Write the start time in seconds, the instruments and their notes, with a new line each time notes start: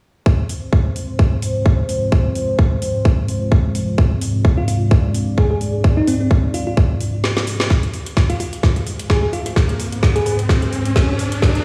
0.26 analog synth pad G#3 C4 F4 C5, kick
0.49 open hi-hat
0.73 kick
0.96 open hi-hat
1.19 kick
1.42 open hi-hat
1.66 kick
1.89 open hi-hat
2.12 kick
2.35 open hi-hat
2.59 kick
2.82 open hi-hat
3.05 kick
3.28 open hi-hat
3.52 kick
3.75 open hi-hat
3.98 analog synth pad D5, kick
4.21 open hi-hat
4.45 kick
4.58 fm electric piano F4
4.68 fm electric piano F4, open hi-hat
4.91 kick
5.14 open hi-hat
5.38 fm electric piano G#4, kick
5.51 fm electric piano G#4
5.61 open hi-hat
5.84 kick
5.97 fm electric piano D#4
6.07 fm electric piano C4, open hi-hat
6.20 fm electric piano C4
6.31 kick
6.54 fm electric piano F4, open hi-hat
6.67 fm electric piano F4
6.77 kick
7.01 open hi-hat
7.24 snare
7.37 snare
7.47 open hi-hat
7.60 snare
7.70 analog synth pad G#3 C4 F4 C5, kick, snare, riser
7.83 closed hi-hat
7.94 open hi-hat
8.06 closed hi-hat
8.17 kick, snare
8.30 fm electric piano F4, closed hi-hat
8.40 fm electric piano F4, open hi-hat
8.53 closed hi-hat
8.63 kick, snare
8.76 closed hi-hat
8.87 open hi-hat
8.99 closed hi-hat
9.10 fm electric piano G#4, kick, snare
9.23 fm electric piano G#4
9.33 fm electric piano F4, open hi-hat
9.46 fm electric piano F4, closed hi-hat
9.56 kick, snare
9.69 closed hi-hat
9.80 open hi-hat
9.92 closed hi-hat
10.03 kick, snare
10.16 fm electric piano G#4, closed hi-hat
10.26 fm electric piano G#4, open hi-hat
10.39 closed hi-hat
10.49 kick, snare
10.62 closed hi-hat
10.73 open hi-hat
10.85 closed hi-hat
10.96 kick, snare
11.19 open hi-hat
11.32 closed hi-hat
11.42 analog synth pad G4, kick, snare
11.55 closed hi-hat